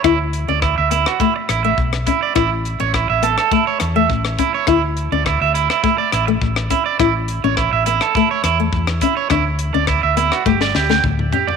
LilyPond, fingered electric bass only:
\new Staff \with { instrumentName = "Fingered electric bass" } { \clef bass \time 4/4 \key d \major \tempo 4 = 104 d,8. d,8 d,8 r8. a,,8 b,,8 r8 | a,,8. a,,8 a,,8 r8. e,8 a,,8 r8 | d,8. d,8 d,8 r8. a,,8 a,,8 r8 | a,,8. a,,8 a,,8 r8. e,8 e,8 r8 |
d,8. d,8 d,8 r16 g,,8 d,8 d,8 r8 | }